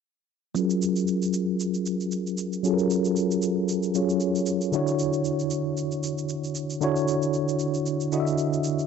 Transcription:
0.55 2.60 F#3 medium
0.55 2.60 C#4 medium
0.55 2.61 F4 medium
0.55 2.61 G#4 medium
0.55 2.62 A#4 medium
0.55 shaker medium
0.70 shaker medium
0.82 shaker medium
0.96 shaker medium
1.08 shaker medium
1.22 shaker medium
1.33 shaker medium
1.60 shaker medium
1.74 shaker soft
1.86 shaker medium
2.01 shaker soft
2.12 shaker medium
2.27 shaker soft
2.38 shaker medium
2.53 shaker soft
2.63 3.92 F#3 medium
2.63 3.92 C#4 medium
2.63 3.93 F4 medium
2.63 3.93 G#4 medium
2.63 2.72 A4 medium
2.63 shaker medium
2.73 3.97 A#4 medium
2.79 shaker medium
2.91 shaker medium
3.05 shaker medium
3.16 shaker medium
3.31 shaker medium
3.42 shaker medium
3.69 shaker medium
3.83 shaker soft
3.94 4.73 F#3 medium
3.94 4.73 C#4 soft
3.94 4.73 F4 soft
3.94 4.74 G#4 soft
3.94 4.74 C#5 medium
3.94 shaker medium
4.09 shaker soft
4.20 shaker medium
4.35 shaker soft
4.46 shaker medium
4.61 shaker soft
4.72 6.77 D3 medium
4.72 6.78 D4 medium
4.72 6.78 E4 medium
4.72 6.79 F#4 medium
4.72 6.79 C#5 medium
4.72 shaker medium
4.87 shaker medium
4.99 shaker medium
5.13 shaker medium
5.25 shaker medium
5.40 shaker medium
5.51 shaker medium
5.77 shaker medium
5.92 shaker soft
6.03 shaker medium
6.18 shaker soft
6.29 shaker medium
6.44 shaker soft
6.55 shaker medium
6.70 shaker soft
6.81 8.09 D3 medium
6.81 8.10 D4 medium
6.81 8.10 E4 medium
6.81 8.10 F#4 medium
6.81 8.11 C#5 medium
6.81 shaker medium
6.96 shaker medium
7.08 shaker medium
7.22 shaker medium
7.34 shaker medium
7.49 shaker medium
7.59 shaker medium
7.74 shaker soft
7.86 shaker medium
8.00 shaker soft
8.12 8.87 D3 medium
8.12 8.87 D4 soft
8.12 8.87 E4 soft
8.12 8.87 F#4 soft
8.12 8.20 D#5 soft
8.12 shaker medium
8.20 8.87 E5 medium
8.27 shaker soft
8.38 shaker medium
8.53 shaker soft
8.64 shaker medium
8.79 shaker soft

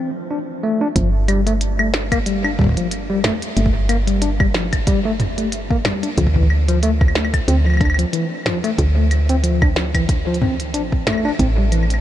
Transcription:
0.30 0.38 D4 medium
0.63 0.81 A3 loud
0.81 0.87 D4 loud
0.96 3.32 G1 loud
0.96 1.07 F3 medium
0.96 kick medium
0.96 closed hi-hat medium
1.28 1.40 G3 loud
1.28 closed hi-hat medium
1.28 claves medium
1.47 1.52 A3 loud
1.47 closed hi-hat medium
1.61 closed hi-hat medium
1.79 1.88 A3 medium
1.79 claves medium
1.94 snare loud
1.94 claves soft
2.12 2.17 A#3 loud
2.12 kick medium
2.12 closed hi-hat medium
2.12 claves medium
2.26 2.44 G3 medium
2.26 closed hi-hat medium
2.44 2.50 D4 medium
2.44 claves medium
2.59 2.66 G3 medium
2.59 kick loud
2.61 kick medium
2.64 kick medium
2.67 kick medium
2.69 kick soft
2.72 kick soft
2.74 2.86 F3 medium
2.74 kick soft
2.74 closed hi-hat medium
2.91 closed hi-hat medium
3.10 3.19 G3 loud
3.24 3.31 A3 loud
3.24 snare loud
3.24 closed hi-hat soft
3.24 mid tom medium
3.24 claves medium
3.42 closed hi-hat medium
3.57 5.93 G1 loud
3.57 3.68 A3 medium
3.57 closed hi-hat medium
3.66 kick medium
3.89 3.96 A#3 loud
3.89 closed hi-hat medium
3.89 claves medium
4.07 4.21 G3 medium
4.07 closed hi-hat medium
4.22 4.29 D4 medium
4.22 closed hi-hat medium
4.40 4.46 G3 medium
4.40 kick loud
4.40 claves medium
4.54 4.66 F3 medium
4.54 snare loud
4.54 claves soft
4.73 kick medium
4.73 closed hi-hat medium
4.73 claves medium
4.87 4.99 G3 loud
4.87 kick loud
4.87 closed hi-hat medium
5.05 5.11 A3 loud
5.20 closed hi-hat soft
5.20 mid tom medium
5.38 5.47 A3 medium
5.38 closed hi-hat medium
5.52 closed hi-hat medium
5.71 5.76 A#3 loud
5.71 kick medium
5.85 6.02 G3 medium
5.85 snare loud
5.85 closed hi-hat soft
5.85 mid tom medium
5.85 claves medium
6.03 6.09 D4 medium
6.03 closed hi-hat medium
6.18 7.40 D2 loud
6.18 6.25 F3 medium
6.18 kick medium
6.18 closed hi-hat medium
6.27 kick medium
6.36 6.45 E3 medium
6.36 kick medium
6.43 kick soft
6.50 claves medium
6.68 6.78 F3 loud
6.68 closed hi-hat medium
6.83 6.90 A3 loud
6.83 closed hi-hat medium
7.01 kick loud
7.01 claves soft
7.08 claves soft
7.15 7.27 A3 medium
7.15 snare loud
7.15 claves medium
7.25 claves medium
7.34 kick medium
7.34 closed hi-hat medium
7.34 claves medium
7.48 8.05 D2 medium
7.48 7.55 C4 loud
7.48 closed hi-hat medium
7.66 7.80 F3 medium
7.66 claves soft
7.70 claves soft
7.74 claves soft
7.77 7.88 D4 medium
7.77 kick loud
7.77 closed hi-hat soft
7.77 claves soft
7.81 claves medium
7.85 claves medium
7.90 claves medium
7.94 claves medium
7.99 8.04 F3 medium
7.99 closed hi-hat medium
8.13 8.25 E3 medium
8.13 closed hi-hat medium
8.46 8.57 F3 loud
8.46 snare loud
8.46 closed hi-hat soft
8.46 mid tom medium
8.46 claves medium
8.64 8.70 A3 loud
8.64 closed hi-hat medium
8.78 10.76 D2 loud
8.78 kick medium
8.78 closed hi-hat medium
8.97 9.06 A3 medium
9.11 closed hi-hat medium
9.11 claves soft
9.29 9.35 C4 loud
9.29 closed hi-hat soft
9.44 9.61 F3 medium
9.44 closed hi-hat medium
9.62 9.67 D4 medium
9.62 kick loud
9.62 claves medium
9.76 9.83 F3 medium
9.76 snare loud
9.76 claves soft
9.95 10.04 E3 medium
9.95 kick medium
9.95 closed hi-hat medium
9.95 claves medium
10.09 kick loud
10.09 closed hi-hat medium
10.27 10.36 F3 loud
10.34 closed hi-hat soft
10.41 10.53 C4 medium
10.41 mid tom medium
10.60 closed hi-hat medium
10.74 11.32 A1 loud
10.74 10.81 D4 medium
10.74 closed hi-hat medium
10.92 kick medium
11.07 11.24 A3 loud
11.07 snare loud
11.07 closed hi-hat soft
11.07 mid tom medium
11.07 claves medium
11.13 claves soft
11.18 claves soft
11.25 11.31 D4 loud
11.25 claves soft
11.29 claves soft
11.35 claves soft
11.39 12.01 A1 loud
11.39 11.46 C4 medium
11.39 kick medium
11.39 closed hi-hat medium
11.58 11.63 G3 medium
11.72 11.84 E3 medium
11.72 closed hi-hat medium
11.72 claves soft
11.83 claves soft
11.90 closed hi-hat medium
11.90 claves soft

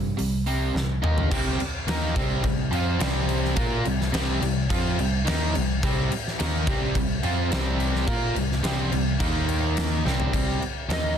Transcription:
0.00 0.16 G2 medium
0.00 0.15 C3 medium
0.00 0.15 G3 medium
0.17 0.69 C2 medium
0.17 0.43 C3 medium
0.17 0.44 G3 medium
0.17 open hi-hat medium
0.47 0.73 C3 medium
0.47 0.74 G3 medium
0.47 0.74 C4 medium
0.47 open hi-hat medium
0.75 1.00 C2 medium
0.75 1.01 C3 medium
0.75 1.00 G3 medium
0.75 snare medium
1.02 1.28 D#2 medium
1.02 1.29 D#3 medium
1.02 1.30 A#3 loud
1.02 1.30 D#4 medium
1.02 mid tom medium
1.18 floor tom medium
1.31 1.58 C2 loud
1.31 1.59 C3 loud
1.31 1.59 G3 loud
1.31 1.59 C4 loud
1.31 kick loud
1.31 crash loud
1.31 crash medium
1.59 muted picked electric bass stroke soft
1.59 muted overdriven electric guitar stroke medium
1.59 muted distorted electric guitar stroke medium
1.59 crash medium
1.87 2.14 D#2 medium
1.87 2.15 D#3 medium
1.87 2.16 A#3 medium
1.87 2.16 D#4 loud
1.87 snare loud
1.87 crash medium
2.16 2.43 C2 loud
2.16 2.42 C3 medium
2.16 2.43 G3 medium
2.16 2.44 C4 loud
2.16 kick loud
2.16 crash medium
2.44 2.71 C2 medium
2.44 2.67 C3 medium
2.44 2.67 G3 medium
2.44 kick medium
2.44 crash medium
2.71 2.99 F2 loud
2.71 2.98 F3 medium
2.71 2.98 C4 loud
2.71 2.99 F4 loud
2.71 crash medium
2.99 3.53 C2 medium
2.99 3.56 C3 medium
2.99 3.56 G3 loud
2.99 3.56 C4 loud
2.99 snare loud
2.99 crash medium
3.29 crash medium
3.45 snare soft
3.56 3.83 A#2 loud
3.56 3.84 A#3 loud
3.56 3.84 F4 loud
3.56 3.85 A#4 loud
3.56 kick loud
3.56 crash medium
3.84 4.11 C2 medium
3.84 4.08 C3 medium
3.84 4.08 G3 medium
3.84 crash medium
4.01 snare soft
4.12 4.40 C2 loud
4.12 4.40 C3 medium
4.12 4.41 G3 medium
4.12 4.42 C4 loud
4.12 snare loud
4.12 crash medium
4.41 4.68 C2 medium
4.41 4.65 C3 medium
4.41 4.65 G3 medium
4.41 crash medium
4.70 4.97 F2 medium
4.70 4.98 F3 loud
4.70 4.98 C4 medium
4.70 4.98 F4 loud
4.70 kick loud
4.70 crash medium
4.99 5.25 C2 medium
4.99 5.22 C3 medium
4.99 5.22 G3 medium
4.99 crash medium
5.26 5.54 D#2 medium
5.26 5.54 D#3 loud
5.26 5.54 A#3 loud
5.26 5.54 D#4 loud
5.26 snare loud
5.26 crash medium
5.55 5.82 C2 medium
5.55 5.77 C3 medium
5.55 5.78 G3 medium
5.55 crash medium
5.83 6.09 C2 loud
5.83 6.11 C3 loud
5.83 6.11 G3 loud
5.83 6.11 C4 loud
5.83 kick loud
5.83 crash medium
6.12 muted overdriven electric guitar stroke medium
6.12 muted picked electric bass stroke soft
6.12 muted distorted electric guitar stroke medium
6.12 crash medium
6.27 snare soft
6.39 6.66 D#2 medium
6.39 6.67 D#3 loud
6.39 6.67 A#3 loud
6.39 6.68 D#4 loud
6.39 snare loud
6.39 crash medium
6.67 6.94 C2 loud
6.67 6.94 C3 loud
6.67 6.95 G3 loud
6.67 6.96 C4 loud
6.67 kick loud
6.67 crash medium
6.95 7.22 C2 medium
6.95 7.18 C3 medium
6.95 7.19 G3 medium
6.95 kick medium
6.95 crash medium
7.23 7.50 F2 loud
7.23 7.51 F3 medium
7.23 7.51 C4 medium
7.23 7.52 F4 loud
7.23 crash medium
7.51 8.05 C2 loud
7.51 8.07 C3 medium
7.51 8.07 G3 medium
7.51 8.07 C4 loud
7.51 snare loud
7.51 crash medium
7.80 crash medium
7.95 snare soft
8.07 8.35 A#2 loud
8.07 8.35 A#3 loud
8.07 8.35 F4 medium
8.07 8.36 A#4 loud
8.07 kick loud
8.07 crash medium
8.35 8.62 C2 medium
8.35 8.59 C3 medium
8.35 8.59 G3 medium
8.35 crash medium
8.52 snare soft
8.63 8.90 C2 medium
8.63 8.90 C3 loud
8.63 8.91 G3 loud
8.63 8.92 C4 loud
8.63 snare loud
8.63 crash medium
8.92 9.19 C2 medium
8.92 9.15 C3 medium
8.92 9.15 G3 medium
8.92 crash medium
9.19 10.02 D#2 medium
9.19 10.04 D#3 loud
9.19 10.05 A#3 loud
9.19 10.05 D#4 loud
9.19 kick loud
9.19 crash medium
9.49 crash medium
9.77 snare loud
9.77 crash medium
10.05 10.32 C2 medium
10.05 10.31 C3 medium
10.05 10.32 G3 medium
10.05 10.32 C4 medium
10.05 snare medium
10.20 floor tom medium
10.32 10.60 C2 loud
10.32 10.59 C3 medium
10.32 10.61 G3 medium
10.32 10.61 C4 loud
10.32 kick loud
10.32 crash medium
10.60 muted overdriven electric guitar stroke medium
10.60 muted picked electric bass stroke soft
10.60 crash medium
10.88 11.16 D#2 medium
10.88 11.17 D#3 medium
10.88 11.17 A#3 loud
10.88 11.18 D#4 loud
10.88 snare loud
10.88 crash medium
10.93 11.18 D#5 medium

